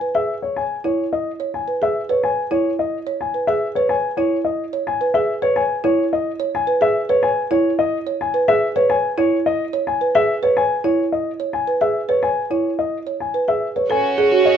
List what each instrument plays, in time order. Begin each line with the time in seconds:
0.01 marimba B4
0.15 marimba G#4, grand piano E5
0.42 grand piano C#5
0.56 grand piano G#5
0.84 marimba E4, grand piano C#5
1.13 grand piano D#5
1.40 marimba C#5
1.54 grand piano G#5
1.68 marimba B4
1.82 marimba G#4, grand piano E5
2.09 marimba B4, grand piano C#5
2.24 grand piano G#5
2.51 marimba E4, grand piano C#5
2.79 grand piano D#5
3.07 marimba C#5
3.21 grand piano G#5
3.34 marimba B4
3.47 marimba G#4, grand piano E5
3.75 marimba B4, grand piano C#5
3.89 grand piano G#5
4.17 marimba E4, grand piano C#5
4.45 grand piano D#5
4.73 marimba C#5
4.87 grand piano G#5
5.01 marimba B4
5.14 marimba G#4, grand piano E5
5.42 marimba B4, grand piano C#5
5.56 grand piano G#5
5.84 marimba E4, grand piano C#5
6.13 grand piano D#5
6.40 marimba C#5
6.55 grand piano G#5
6.67 marimba B4
6.81 marimba G#4, grand piano E5
7.09 marimba B4, grand piano C#5
7.23 grand piano G#5
7.51 marimba E4, grand piano C#5
7.79 grand piano D#5
8.07 marimba C#5
8.21 grand piano G#5
8.34 marimba B4
8.48 marimba G#4, grand piano E5
8.76 marimba B4, grand piano C#5
8.90 grand piano G#5
9.18 marimba E4, grand piano C#5
9.46 grand piano D#5
9.73 marimba C#5
9.87 grand piano G#5
10.01 marimba B4
10.15 marimba G#4, grand piano E5
10.43 marimba B4, grand piano C#5
10.57 grand piano G#5
10.84 marimba E4, grand piano C#5
11.12 grand piano D#5
11.40 marimba C#5
11.53 grand piano G#5
11.67 marimba B4
11.81 marimba G#4, grand piano E5
12.09 marimba B4, grand piano C#5
12.23 grand piano G#5
12.50 marimba E4, grand piano C#5
12.79 grand piano D#5
13.07 marimba C#5
13.20 grand piano G#5
13.34 marimba B4
13.48 marimba G#4, grand piano E5
13.76 marimba B4, grand piano C#5
13.90 violin section C#4 F#4, marimba A4, french horn C#5, grand piano G#5
14.18 marimba G#4, grand piano C#5
14.32 marimba F#4
14.46 grand piano D#5